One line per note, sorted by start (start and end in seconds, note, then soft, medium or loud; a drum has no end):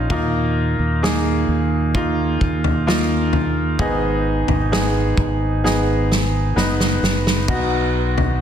0.00 0.12 C#4 medium
0.00 0.11 D#4 medium
0.00 0.11 F4 medium
0.00 0.12 F5 medium
0.00 0.11 G#5 medium
0.10 0.75 D#2 medium
0.10 1.45 A#2 medium
0.10 0.98 A#3 medium
0.10 0.98 D#4 medium
0.10 0.98 F4 medium
0.10 kick medium
0.10 floor tom medium
0.79 1.44 D#2 medium
1.03 1.90 A#3 medium
1.03 1.90 D#4 medium
1.03 1.90 G#4 medium
1.03 snare medium
1.48 2.37 D#2 medium
1.95 2.82 A#3 medium
1.95 2.82 D#4 medium
1.95 2.83 F4 medium
1.95 kick medium
1.95 floor tom soft
2.41 3.75 D#2 medium
2.41 kick medium
2.64 floor tom medium
2.87 3.75 A#3 medium
2.87 3.75 D#4 medium
2.87 3.75 F4 medium
2.87 snare medium
3.33 floor tom medium
3.79 4.45 G#1 medium
3.79 5.14 G#2 soft
3.79 5.14 D#3 soft
3.79 4.67 B3 medium
3.79 4.67 D#4 medium
3.79 4.67 G#4 medium
3.79 kick medium
3.79 floor tom medium
4.48 5.14 G#1 medium
4.48 floor tom medium
4.72 5.59 B3 medium
4.72 5.59 D#4 medium
4.72 5.60 G#4 medium
4.72 snare medium
5.17 6.52 G#1 medium
5.17 kick medium
5.64 6.52 B3 medium
5.64 6.52 D#4 medium
5.64 6.52 G#4 medium
5.64 snare soft
6.12 snare medium
6.56 6.99 F#1 medium
6.56 7.44 B3 medium
6.56 7.44 D#4 medium
6.56 7.44 B4 medium
6.56 snare medium
6.80 snare medium
7.03 7.45 F#1 medium
7.03 snare medium
7.27 snare medium
7.48 8.41 B1 medium
7.48 8.36 B3 medium
7.48 8.36 D#4 soft
7.48 8.36 F#4 medium
7.48 kick medium
7.48 floor tom medium
7.48 crash medium
8.18 floor tom medium